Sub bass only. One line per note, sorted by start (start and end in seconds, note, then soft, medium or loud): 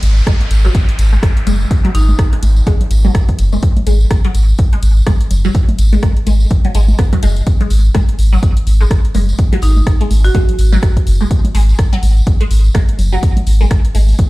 0.03 0.22 G#1 loud
0.51 0.70 G#1 medium
0.99 1.18 G#1 loud
1.47 1.66 F#1 medium
1.95 2.14 G#1 loud
2.43 2.62 G#1 medium
2.91 3.10 G#1 loud
3.39 3.58 F#1 medium
3.87 4.06 G#1 loud
4.35 4.54 G#1 medium
4.83 5.02 G#1 loud
5.31 5.50 F#1 medium
5.79 5.98 G#1 loud
6.27 6.46 G#1 medium
6.75 6.94 G#1 loud
7.23 7.42 F#1 loud
7.71 7.90 G#1 loud
8.19 8.38 G#1 medium
8.67 8.86 G#1 loud
9.15 9.34 F#1 medium
9.63 9.82 G#1 loud
10.11 10.30 G#1 medium
10.59 10.78 G#1 loud
11.07 11.26 F#1 medium
11.55 11.74 G#1 loud
12.03 12.22 G#1 medium
12.51 12.70 G#1 loud
12.99 13.18 F#1 medium
13.47 13.66 G#1 loud
13.95 14.14 G#1 medium